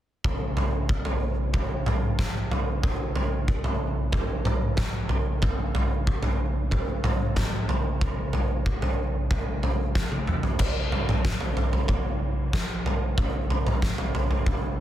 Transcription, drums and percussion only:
0.24 kick, floor tom
0.57 floor tom
0.89 kick
1.05 floor tom
1.54 kick, floor tom
1.86 floor tom, mid tom
2.19 kick, snare, mid tom
2.51 floor tom
2.83 kick, floor tom
3.16 floor tom
3.48 kick
3.64 floor tom
4.12 kick, floor tom
4.45 floor tom, mid tom
4.77 kick, snare, mid tom
5.09 floor tom
5.42 kick, floor tom
5.75 floor tom
6.07 kick
6.23 floor tom
6.71 kick, floor tom
7.04 floor tom, mid tom
7.36 kick, snare, mid tom
7.69 floor tom
8.01 kick, floor tom
8.33 floor tom
8.66 kick
8.82 floor tom
9.31 kick, floor tom
9.63 floor tom
9.95 kick, snare
10.12 high tom
10.27 mid tom
10.43 floor tom
10.59 kick, floor tom, crash
10.92 floor tom
11.09 floor tom, mid tom
11.25 kick, snare
11.41 floor tom
11.57 floor tom
11.73 floor tom
11.88 kick, floor tom
12.53 kick, snare
12.86 floor tom
13.18 kick, floor tom
13.50 floor tom
13.67 floor tom, mid tom
13.82 kick, snare
13.98 floor tom
14.15 floor tom
14.31 floor tom
14.46 kick, floor tom

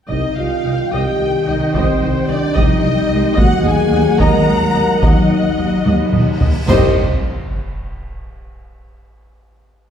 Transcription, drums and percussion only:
0.10 taiko
1.75 taiko
2.56 taiko
3.38 taiko
4.20 taiko
5.03 taiko
5.86 taiko high
6.13 taiko mid
6.41 taiko low
6.68 concert bass drum, taiko low, crash

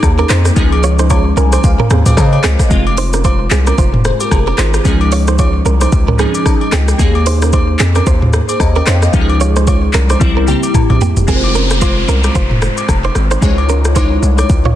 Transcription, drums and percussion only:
0.03 kick, cross-stick, low woodblock, shaker
0.18 high agogo
0.29 cross-stick, clap, shaker
0.45 cross-stick, shaker
0.56 kick, shaker
0.72 high agogo
0.83 shaker
0.99 cross-stick, shaker
1.10 kick, high agogo, low woodblock, shaker
1.37 shaker
1.52 cross-stick, high agogo, shaker
1.64 kick, shaker
1.79 mid tom
1.90 cross-stick, mid tom, shaker
2.06 mid tom, high agogo, shaker
2.17 kick, cross-stick, low woodblock, shaker
2.33 high agogo
2.44 cross-stick, clap, shaker
2.59 kick, cross-stick, shaker
2.71 kick, shaker
2.87 high agogo
2.97 open hi-hat, shaker
3.13 cross-stick, shaker
3.24 kick, high agogo, shaker
3.50 clap, shaker
3.67 cross-stick, high agogo, shaker
3.78 kick, shaker
3.94 mid tom
4.05 cross-stick, shaker
4.20 high agogo, shaker
4.31 kick, cross-stick, low woodblock, shaker
4.47 high agogo
4.58 cross-stick, clap, shaker
4.74 cross-stick, shaker
4.85 kick, shaker
5.01 high agogo
5.12 open hi-hat, shaker
5.27 cross-stick, shaker
5.38 kick, high agogo, shaker
5.66 shaker
5.81 cross-stick, high agogo, shaker
5.92 kick, shaker
6.08 mid tom
6.19 cross-stick, shaker
6.34 high agogo, shaker
6.46 kick, cross-stick, low woodblock, shaker
6.61 high agogo
6.72 cross-stick, clap, shaker
6.88 cross-stick, shaker
6.99 kick, shaker
7.15 high agogo
7.26 open hi-hat, shaker
7.42 cross-stick, shaker
7.53 kick, high agogo, shaker
7.79 clap, shaker
7.95 cross-stick, high agogo, shaker
8.06 kick, shaker
8.22 mid tom
8.33 cross-stick, shaker
8.49 high agogo, shaker
8.60 kick, cross-stick, low woodblock, shaker
8.76 high agogo
8.87 cross-stick, clap, shaker
9.02 cross-stick, shaker
9.13 kick, shaker
9.30 high agogo
9.40 shaker
9.56 cross-stick, shaker
9.67 kick, high agogo, shaker
9.93 clap, shaker
10.09 cross-stick, high agogo, shaker
10.21 kick, high tom, shaker
10.47 mid tom, shaker
10.63 high agogo, shaker
10.74 kick, mid tom, low woodblock, shaker
10.90 mid tom, high agogo
11.01 floor tom, shaker
11.17 floor tom, shaker
11.28 kick, shaker
11.44 high agogo
11.55 shaker
11.70 cross-stick, shaker
11.81 kick, high agogo, shaker
12.08 shaker
12.24 cross-stick, high agogo, shaker
12.35 kick, shaker
12.51 mid tom
12.62 cross-stick, shaker
12.77 high agogo, shaker
12.89 kick, cross-stick, low woodblock, shaker
13.04 high agogo
13.15 cross-stick, shaker
13.31 cross-stick, shaker
13.42 kick, shaker
13.58 high agogo
13.69 shaker
13.85 cross-stick, shaker
13.96 kick, high agogo, shaker
14.23 shaker
14.38 cross-stick, high agogo, shaker
14.49 kick, shaker
14.65 mid tom

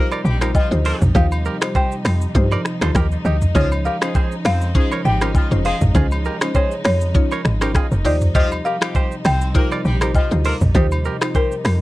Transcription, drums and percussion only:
0.12 high agogo, shaker
0.25 shaker
0.41 finger snap, cross-stick, high agogo, shaker
0.55 kick, low woodblock, shaker
0.72 shaker
0.85 open hi-hat, shaker
1.01 mid tom, shaker
1.15 kick, shaker
1.32 high agogo, shaker
1.45 shaker
1.62 finger snap, cross-stick, high agogo, shaker
1.75 kick, low woodblock, shaker
1.92 shaker
2.05 finger snap, cross-stick, open hi-hat, high agogo, shaker
2.21 shaker
2.35 kick, shaker
2.51 high agogo, shaker
2.65 finger snap, cross-stick, shaker
2.81 finger snap, cross-stick, high agogo, shaker
2.95 finger snap, kick, cross-stick, low woodblock, shaker
3.12 shaker
3.25 shaker
3.42 mid tom, shaker
3.55 kick, shaker
3.72 high agogo, shaker
3.85 shaker
4.02 finger snap, cross-stick, high agogo, shaker
4.15 kick, low woodblock, shaker
4.32 shaker
4.45 finger snap, cross-stick, open hi-hat, high agogo, shaker
4.61 shaker
4.75 kick, shaker
4.91 high agogo, shaker
5.05 shaker
5.21 finger snap, cross-stick, high agogo, shaker
5.35 kick, low woodblock, shaker
5.51 shaker
5.65 open hi-hat, shaker
5.81 mid tom, shaker
5.95 kick, shaker
6.11 high agogo, shaker
6.25 shaker
6.41 finger snap, cross-stick, high agogo, shaker
6.54 kick, low woodblock, shaker
6.71 shaker
6.84 finger snap, cross-stick, open hi-hat, high agogo, shaker
7.01 shaker
7.15 kick, shaker
7.31 high agogo, shaker
7.45 finger snap, cross-stick, shaker
7.61 finger snap, cross-stick, high agogo, shaker
7.75 finger snap, kick, cross-stick, low woodblock, shaker
7.91 shaker
8.05 open hi-hat, shaker
8.21 mid tom, shaker
8.35 kick, shaker
8.51 high agogo, shaker
8.65 shaker
8.82 finger snap, cross-stick, high agogo, shaker
8.95 kick, low woodblock, shaker
9.12 shaker
9.25 finger snap, cross-stick, open hi-hat, high agogo, shaker
9.41 shaker
9.55 kick, shaker
9.71 high agogo, shaker
9.85 shaker
10.01 finger snap, cross-stick, high agogo, shaker
10.15 kick, low woodblock, shaker
10.31 shaker
10.45 open hi-hat, shaker
10.61 mid tom, shaker
10.75 kick, shaker
10.91 high agogo, shaker
11.05 shaker
11.21 finger snap, cross-stick, high agogo, shaker
11.35 kick, low woodblock, shaker
11.52 shaker
11.65 finger snap, cross-stick, open hi-hat, high agogo, shaker

